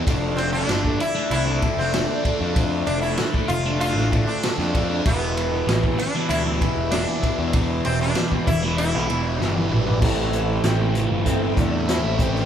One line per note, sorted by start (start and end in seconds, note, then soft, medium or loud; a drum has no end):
0.06 0.62 F1 loud
0.06 0.67 D3 medium
0.06 5.02 F3 medium
0.06 0.55 A3 medium
0.06 5.02 D4 medium
0.06 0.53 D4 loud
0.06 5.02 A4 medium
0.06 2.54 D5 medium
0.06 kick loud
0.06 ride medium
0.37 0.52 C4 medium
0.37 ride medium
0.53 0.69 A3 medium
0.53 1.01 D4 medium
0.53 0.70 D4 medium
0.68 0.96 G1 medium
0.68 0.99 D3 medium
0.68 0.86 A3 medium
0.68 0.84 D4 medium
0.68 snare loud
0.68 ride medium
0.84 1.00 A3 medium
0.84 1.01 D4 medium
0.84 kick medium
1.00 1.31 E4 loud
1.00 muted distorted electric guitar stroke soft
1.00 ride medium
1.15 1.47 A3 medium
1.15 1.45 D4 medium
1.31 1.59 C2 medium
1.31 1.75 E4 medium
1.31 ride medium
1.46 1.61 A3 medium
1.46 1.62 D4 medium
1.61 1.92 D3 medium
1.61 1.93 A3 medium
1.61 1.94 D4 medium
1.61 kick medium
1.61 ride medium
1.77 2.05 F1 medium
1.77 2.22 C4 medium
1.93 2.22 D3 medium
1.93 2.09 A3 medium
1.93 2.07 D4 medium
1.93 snare loud
1.93 ride medium
2.08 2.24 A3 medium
2.08 2.25 D4 medium
2.23 2.53 D3 medium
2.23 2.41 A3 medium
2.23 2.39 D4 medium
2.23 kick medium
2.23 ride medium
2.40 2.82 F2 medium
2.40 2.55 A3 medium
2.40 2.56 D4 medium
2.55 3.17 D3 medium
2.55 3.04 A3 medium
2.55 3.01 D4 medium
2.55 5.03 C5 medium
2.55 kick loud
2.55 ride medium
2.86 3.15 F1 medium
2.86 3.01 D4 medium
2.86 ride medium
3.02 3.18 A3 soft
3.02 3.19 D4 medium
3.02 3.46 E4 medium
3.17 3.49 D3 medium
3.17 3.35 A3 medium
3.17 3.33 D4 loud
3.17 snare loud
3.17 ride medium
3.34 3.49 A3 medium
3.34 3.50 D4 medium
3.34 kick medium
3.48 3.96 F1 medium
3.48 3.78 F4 loud
3.48 muted distorted electric guitar stroke soft
3.48 ride medium
3.66 3.98 A3 medium
3.66 3.96 D4 medium
3.80 4.27 F4 medium
3.80 ride medium
3.96 4.24 A1 medium
3.96 4.12 A3 medium
3.96 4.13 D4 medium
3.96 snare soft
4.12 4.42 D3 medium
4.12 4.44 A3 medium
4.12 4.45 D4 medium
4.12 kick medium
4.12 ride medium
4.27 4.71 D4 medium
4.43 4.74 D3 medium
4.43 4.60 A3 medium
4.43 4.57 D4 loud
4.43 snare loud
4.43 ride medium
4.58 5.00 F2 medium
4.58 4.75 A3 medium
4.58 4.76 D4 medium
4.58 snare soft
4.75 5.04 D3 medium
4.75 4.91 A3 medium
4.75 4.88 D4 medium
4.75 kick medium
4.75 ride medium
4.90 5.05 A3 medium
4.90 5.03 D4 medium
5.05 5.61 E1 loud
5.05 5.66 E2 medium
5.05 5.53 B2 loud
5.05 5.51 E3 loud
5.05 5.98 B3 medium
5.05 9.99 E4 medium
5.05 9.99 G4 medium
5.05 9.99 B4 medium
5.05 7.52 E5 medium
5.05 kick loud
5.05 ride medium
5.37 ride medium
5.52 5.67 B2 medium
5.52 5.69 E3 medium
5.67 5.95 A1 loud
5.67 5.99 E2 medium
5.67 5.84 B2 medium
5.67 5.83 E3 loud
5.67 snare loud
5.67 ride medium
5.83 5.98 B2 medium
5.83 6.00 E3 medium
5.83 kick medium
5.98 6.29 D4 medium
5.98 muted distorted electric guitar stroke soft
5.98 ride medium
6.15 6.46 B2 medium
6.15 6.44 E3 medium
6.29 6.58 D2 medium
6.29 6.91 E4 loud
6.29 ride medium
6.45 6.61 B2 medium
6.45 6.63 E3 medium
6.61 6.90 E2 medium
6.61 6.91 B2 medium
6.61 6.94 E3 medium
6.61 kick medium
6.61 ride medium
6.77 7.04 E1 medium
6.91 7.22 E2 medium
6.91 7.08 B2 medium
6.91 7.07 E3 medium
6.91 7.35 D4 medium
6.91 snare loud
6.91 ride medium
7.08 7.23 B2 medium
7.08 7.25 E3 medium
7.23 7.53 E2 medium
7.23 7.40 B2 medium
7.23 7.37 E3 medium
7.23 kick medium
7.23 ride medium
7.38 7.80 E2 medium
7.38 7.54 B2 medium
7.38 7.55 E3 medium
7.53 8.15 E2 medium
7.53 8.01 B2 loud
7.53 7.99 E3 medium
7.53 9.99 D5 medium
7.53 kick loud
7.53 ride medium
7.85 8.13 E1 medium
7.85 8.01 C4 medium
7.85 ride medium
8.00 8.16 B2 medium
8.00 8.17 E3 medium
8.00 8.44 D4 medium
8.15 8.46 E2 medium
8.15 8.32 B2 medium
8.15 8.30 E3 loud
8.15 snare loud
8.15 ride medium
8.31 8.46 B2 medium
8.31 8.46 E3 medium
8.31 kick medium
8.47 8.94 E1 loud
8.47 8.76 E4 medium
8.47 muted distorted electric guitar stroke soft
8.47 kick medium
8.47 ride medium
8.62 8.94 B2 medium
8.62 8.92 E3 medium
8.78 9.41 E4 medium
8.78 ride medium
8.93 9.08 B1 medium
8.93 9.09 B2 medium
8.93 9.09 E3 medium
8.93 snare soft
9.09 9.38 E1 medium
9.09 9.38 E2 medium
9.09 9.39 B2 medium
9.09 9.40 E3 medium
9.09 ride medium
9.39 9.69 G1 medium
9.39 9.69 E2 medium
9.39 9.56 B2 medium
9.39 9.54 E3 loud
9.39 9.67 D4 medium
9.39 snare medium
9.56 9.70 B2 soft
9.56 9.71 E3 medium
9.56 high tom medium
9.70 9.99 A1 medium
9.70 10.00 E2 medium
9.70 9.87 B2 medium
9.70 9.85 E3 medium
9.70 mid tom medium
9.86 10.01 B2 medium
9.86 10.00 E3 medium
9.86 floor tom medium
10.02 10.57 A1 loud
10.02 12.45 A2 medium
10.02 10.91 A3 medium
10.02 10.91 C4 soft
10.02 10.92 E4 medium
10.02 10.99 G4 medium
10.02 kick loud
10.02 crash loud
10.18 snare soft
10.33 10.95 E3 medium
10.33 closed hi-hat medium
10.64 11.06 A1 medium
10.64 11.26 C4 medium
10.64 snare loud
10.64 closed hi-hat medium
10.95 12.45 E3 medium
10.95 11.24 F4 medium
10.95 closed hi-hat medium
11.10 11.52 G1 medium
11.25 11.54 A3 soft
11.25 11.54 C4 soft
11.25 12.18 C4 medium
11.25 11.54 E4 medium
11.25 kick medium
11.25 closed hi-hat medium
11.57 11.99 E2 medium
11.57 12.45 A3 medium
11.57 11.89 D4 medium
11.57 kick medium
11.57 closed hi-hat medium
11.88 12.36 C4 medium
11.88 12.45 E4 medium
11.88 snare loud
11.88 closed hi-hat medium
12.03 12.45 A1 medium
12.18 12.45 C4 medium
12.18 kick medium
12.18 closed hi-hat medium
12.34 12.45 D4 medium
12.34 snare soft